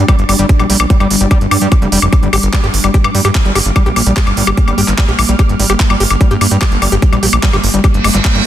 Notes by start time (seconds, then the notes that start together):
Already playing: G3 D4
0.08 G3, kick, closed hi-hat, high woodblock
0.19 G1, closed hi-hat
0.29 G1 G3, open hi-hat, high woodblock
0.39 G1 G3, closed hi-hat
0.49 kick, closed hi-hat
0.59 A#1 G3, closed hi-hat, high woodblock
0.70 A#1 G3, open hi-hat
0.80 A#1, closed hi-hat, high woodblock
0.90 G3, kick, closed hi-hat
1.00 G1 G3, closed hi-hat, high woodblock
1.11 G1, open hi-hat
1.21 G1 G3, closed hi-hat
1.31 G3, kick, closed hi-hat, high woodblock
1.41 G1, closed hi-hat
1.51 G2 G3, open hi-hat, high woodblock
1.62 G2 G3, closed hi-hat
1.72 kick, closed hi-hat, high woodblock
1.82 F1 G3, closed hi-hat
1.92 F1 G3, open hi-hat
2.02 F1, closed hi-hat, high woodblock
2.13 A#3, kick, closed hi-hat, high woodblock
2.23 G1 G3, closed hi-hat
2.33 G#1 G4, open hi-hat, high woodblock
2.43 G1, closed hi-hat
2.53 G3, kick, clap, closed hi-hat, high woodblock
2.64 G1 G4, closed hi-hat
2.74 G1, open hi-hat
2.84 G1 G3, closed hi-hat, high woodblock
2.94 G4, kick, closed hi-hat
3.04 G2, closed hi-hat, high woodblock
3.15 G2 G3, open hi-hat
3.25 G2 G4, closed hi-hat, high woodblock
3.35 kick, clap, closed hi-hat
3.45 G1 G3, closed hi-hat
3.55 G1 G4, open hi-hat, high woodblock
3.66 G1, closed hi-hat
3.76 G3, kick, closed hi-hat, high woodblock
3.86 A#1 G4, closed hi-hat
3.96 A#1, open hi-hat, high woodblock
4.06 A#1 G3, closed hi-hat
4.17 G4, kick, clap, closed hi-hat
4.27 G1, closed hi-hat, high woodblock
4.37 G1 G3, open hi-hat
4.47 G1 G4, closed hi-hat, high woodblock
4.57 kick, closed hi-hat
4.68 G1 G3, closed hi-hat, high woodblock
4.78 G1 G4, open hi-hat
4.88 G1, clap, closed hi-hat
4.98 G3, kick, clap, closed hi-hat, high woodblock
5.08 A#1 G4, closed hi-hat
5.19 A#1, open hi-hat, high woodblock
5.29 A#1 G3, closed hi-hat
5.39 G4, kick, closed hi-hat, high woodblock
5.49 G1, closed hi-hat
5.59 G#1 G3, open hi-hat
5.70 G1 G4, closed hi-hat, high woodblock
5.80 kick, clap, closed hi-hat
5.90 G1 G3, closed hi-hat, high woodblock
6.00 G1 G4, open hi-hat
6.11 G1, closed hi-hat, high woodblock
6.21 G3, kick, closed hi-hat
6.31 G2 G4, closed hi-hat
6.41 G2, open hi-hat, high woodblock
6.51 G2 G3, closed hi-hat
6.62 G4, kick, clap, closed hi-hat, high woodblock
6.72 G1, closed hi-hat
6.82 G1 G3, open hi-hat, high woodblock
6.92 G1 G4, closed hi-hat
7.02 kick, closed hi-hat
7.13 A#1 G3, closed hi-hat, high woodblock
7.23 A#1 G4, open hi-hat
7.33 A#1, high woodblock
7.43 G3, kick, clap, closed hi-hat
7.53 G1 G4, closed hi-hat, high woodblock
7.64 G1, open hi-hat
7.74 G1 G3, closed hi-hat
7.84 G4, kick, closed hi-hat, reverse cymbal, high woodblock
7.94 G1, closed hi-hat
8.04 G1 G#3, open hi-hat, high woodblock
8.15 G1 G3, clap, closed hi-hat
8.25 G3, kick, clap, closed hi-hat, high woodblock
8.35 G1 G3, closed hi-hat